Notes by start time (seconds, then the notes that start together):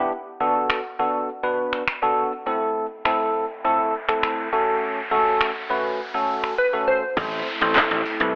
Already playing: B3 D4 E4 G4
0.40 B3 D4 F#4 A4
0.70 finger snap
0.99 B3 D4 F#4 A4
1.43 B3 D4 F#4 B4
1.73 finger snap
1.88 finger snap
2.02 B3 D4 F#4 A4
2.46 A3 C4 E4 A4, riser
3.05 A3 C4 E4 A4, finger snap
3.64 A3 C4 E4 A4
4.08 A3 C4 E4 A4, finger snap
4.23 finger snap
4.52 A3 C#4 F#4 A4
5.11 A3 C#4 F#4 A4
5.41 finger snap
5.70 A3 C#4 F#4 B4
6.14 A3 C#4 F#4 A4
6.44 finger snap
6.59 B4
6.73 A3 C#4 F#4 A4
6.88 C5
7.17 A1 A3 C4 E4 A4 C5, kick, crash, downlifter, shaker
7.32 closed hi-hat, shaker
7.46 open hi-hat, shaker
7.61 A1 A3 C4 E4 A4 C5, closed hi-hat, shaker
7.76 kick, snare, clap, tambourine, shaker
7.91 A1, closed hi-hat, shaker
8.05 open hi-hat, shaker
8.20 C2 A3 C4 E4 A4 B4, closed hi-hat, shaker